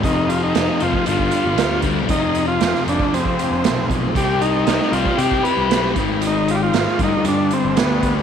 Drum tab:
HH |x-x-x-x-x-x-x-x-|x-x-x-x-x-x-x-x-|x-x-x-x-x-x-x-x-|x-x-x-x-x-x-x-x-|
SD |----o-------o---|----oo------o---|----oo------o---|----oo------o---|
BD |o------o-o----o-|o------o-o----o-|o------o-o----o-|------o-------o-|